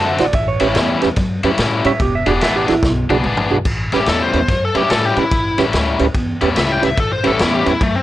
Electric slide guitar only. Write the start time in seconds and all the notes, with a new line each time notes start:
0.05 E5
0.21 D5
0.35 E5
0.48 C#5
1.87 E5
2.02 G4
2.15 E5
2.28 G4
2.43 E5
2.56 G4
2.69 E4